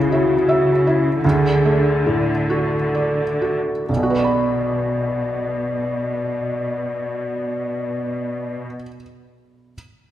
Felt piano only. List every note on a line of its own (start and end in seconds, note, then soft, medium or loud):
0.00 1.19 C#2 soft
0.00 0.33 C#3 soft
0.00 1.26 A4 soft
0.12 0.71 E4 soft
0.49 1.09 E5 soft
0.87 1.25 E4 soft
1.25 3.85 D2 soft
1.65 2.31 A3 soft
2.06 2.75 A2 soft
2.50 3.22 F#4 soft
2.94 3.70 D5 soft
3.42 3.89 F#4 soft
3.89 8.66 B1 soft
3.96 8.74 B2 soft
4.03 8.80 F#4 soft
4.10 8.87 B4 soft
4.18 8.95 D5 soft
4.24 9.02 B5 soft